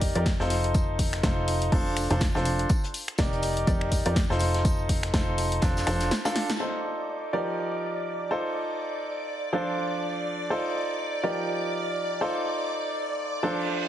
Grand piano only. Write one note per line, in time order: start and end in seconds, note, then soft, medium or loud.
0.00 0.12 D#4 medium
0.00 0.12 G4 medium
0.00 0.12 A#4 medium
0.00 0.12 D5 medium
0.15 0.29 D#4 medium
0.15 0.29 G4 medium
0.15 0.29 A#4 medium
0.15 0.29 D5 medium
0.40 1.21 D#4 medium
0.40 1.21 F4 medium
0.40 1.21 A4 medium
0.40 1.21 C5 medium
1.23 1.70 D#4 medium
1.23 1.70 F4 medium
1.23 1.70 A4 medium
1.23 1.70 C5 medium
1.72 2.07 D4 medium
1.72 2.07 F4 medium
1.72 2.07 A4 medium
1.72 2.07 C5 medium
2.11 2.24 D4 medium
2.11 2.24 F4 medium
2.11 2.24 A4 medium
2.11 2.24 C5 medium
2.35 2.69 D4 medium
2.35 2.69 F4 medium
2.35 2.69 A4 medium
2.35 2.69 C5 medium
3.19 3.65 D#4 medium
3.19 3.65 G4 medium
3.19 3.65 A#4 medium
3.19 3.65 D5 medium
3.67 4.02 D#4 medium
3.67 4.02 G4 medium
3.67 4.02 A#4 medium
3.67 4.02 D5 medium
4.06 4.19 D#4 medium
4.06 4.19 G4 medium
4.06 4.19 A#4 medium
4.06 4.19 D5 medium
4.30 5.11 D#4 medium
4.30 5.11 F4 medium
4.30 5.11 A4 medium
4.30 5.11 C5 loud
5.14 5.60 D#4 medium
5.14 5.60 F4 medium
5.14 5.60 A4 medium
5.14 5.60 C5 medium
5.62 5.85 D4 medium
5.62 5.85 F4 medium
5.62 5.85 A4 medium
5.62 5.85 C5 medium
5.87 6.11 D4 loud
5.87 6.11 F4 medium
5.87 6.11 A4 medium
5.87 6.11 C5 loud
6.25 6.49 D4 medium
6.25 6.49 F4 medium
6.25 6.49 A4 medium
6.25 6.49 F5 loud
6.60 7.31 D#4 medium
6.60 7.31 F4 medium
6.60 7.31 A4 medium
6.60 7.31 C5 medium
7.33 8.28 F3 medium
7.33 8.28 D#4 medium
7.33 8.28 G4 medium
7.33 8.28 A#4 medium
7.33 8.28 D5 medium
8.31 9.50 D#4 medium
8.31 9.50 F4 medium
8.31 9.50 A4 medium
8.31 9.50 C5 medium
9.53 10.48 F3 medium
9.53 10.48 D4 medium
9.53 10.48 F4 medium
9.53 10.48 A4 medium
9.53 10.48 C5 medium
10.50 11.21 D#4 medium
10.50 11.21 F4 medium
10.50 11.21 A4 medium
10.50 11.21 C5 medium
11.23 12.19 F3 medium
11.23 12.19 D#4 medium
11.23 12.19 G4 medium
11.23 12.19 A#4 medium
11.23 12.19 D5 medium
12.21 13.40 D#4 medium
12.21 13.40 F4 medium
12.21 13.40 A4 medium
12.21 13.40 C5 medium
13.43 13.88 F3 medium
13.43 13.88 D4 medium
13.43 13.88 F4 medium
13.43 13.88 A4 medium
13.43 13.88 C5 medium